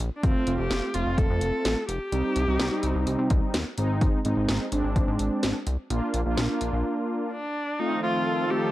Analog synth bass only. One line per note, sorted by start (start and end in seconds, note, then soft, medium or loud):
0.00 0.10 A#1 medium
0.23 0.34 F1 loud
0.47 0.57 F1 loud
0.59 0.69 F1 loud
0.71 0.81 F1 loud
0.94 1.05 F1 loud
1.06 1.16 F1 loud
1.18 1.28 F1 loud
1.30 1.40 F2 loud
1.41 1.52 F1 loud
1.65 1.75 A1 medium
1.89 1.99 F1 medium
2.12 2.23 C2 loud
2.36 2.46 C2 loud
2.48 2.58 C2 medium
2.60 2.70 C2 loud
2.83 2.94 C2 loud
2.95 3.05 C2 loud
3.07 3.17 C2 medium
3.19 3.29 C3 medium
3.31 3.41 C2 loud
3.54 3.64 D#2 medium
3.78 4.09 G#1 loud
4.25 4.35 G#1 loud
4.37 4.47 G#1 loud
4.49 4.59 G#1 loud
4.72 4.83 G#1 loud
4.84 4.94 G#1 loud
4.96 5.06 G#1 loud
5.08 5.18 G#2 loud
5.19 5.30 G#1 loud
5.43 5.53 G#1 loud
5.67 5.77 C2 medium
5.90 6.01 A#1 loud
6.14 6.24 A#1 loud
6.26 6.36 A#1 medium
6.38 6.48 A#1 loud
6.61 6.72 A#1 loud
6.73 6.83 A#1 loud